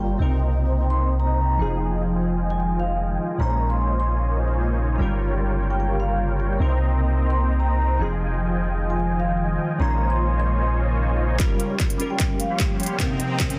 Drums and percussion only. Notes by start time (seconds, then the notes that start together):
11.40 kick, clap, closed hi-hat
11.60 closed hi-hat
11.80 kick, clap, closed hi-hat
11.90 closed hi-hat
12.00 closed hi-hat
12.20 kick, clap, closed hi-hat
12.40 closed hi-hat
12.60 kick, clap, closed hi-hat
12.80 closed hi-hat
12.83 closed hi-hat
12.86 closed hi-hat
13.00 kick, clap, closed hi-hat
13.20 closed hi-hat
13.40 kick, clap, closed hi-hat
13.50 closed hi-hat